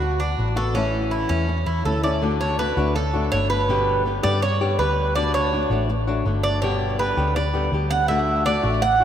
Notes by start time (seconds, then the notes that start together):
Already playing: D2 F#4
0.01 muted nylon-string guitar stroke
0.20 D4
0.38 A1 G3 B3 F#4
0.56 B3 F#4 A4
0.74 E3 A3 C#4 E4
1.11 E4
1.29 E2 C#4
1.48 muted nylon-string guitar stroke
1.66 E2 E4
1.85 D2 E3 A3 C#4 E4 A4
2.03 A3 C#4 E4 D5
2.21 D3 A3 D4 F#4
2.41 C#5
2.58 D3 A3 D4 F#4 B4
2.77 D2 A3 D4 F#4
2.95 A4, muted nylon-string guitar stroke
3.13 A3 D4 F#4
3.32 G1 D3 A3 D4 F#4 C#5
3.50 B4
3.68 B2 D3 G3 B3 G4
4.05 D3 G3 B3 G4
4.23 G2 D3 G3 B3 G4 D5
4.42 C#5, muted nylon-string guitar stroke
4.61 D3 G3 B3 G4
4.79 D2 D3 G3 B3 G4 B4
5.15 D3 A3 D4 F#4 D5
5.34 C#5
5.52 D3 A3 D4 F#4
5.70 A1 A3 D4 F#4
5.89 muted nylon-string guitar stroke
6.07 A3 D4 F#4
6.25 G1 D3 A3 D4 F#4
6.43 D5
6.62 B2 D3 G3 B3 G4 C#5
6.99 D3 G3 B3 G4 B4
7.17 D2 D3 G3 B3 G4
7.36 D5, muted nylon-string guitar stroke
7.54 D3 G3 B3 G4
7.72 D2 D3 G3 B3 G4
7.91 F#5
8.08 D3 A3 D4 F#4 E5
8.45 D3 A3 D4 F#4 D5
8.63 A1 A3 D4 F#4
8.82 F#5, muted nylon-string guitar stroke
9.00 D4 F#4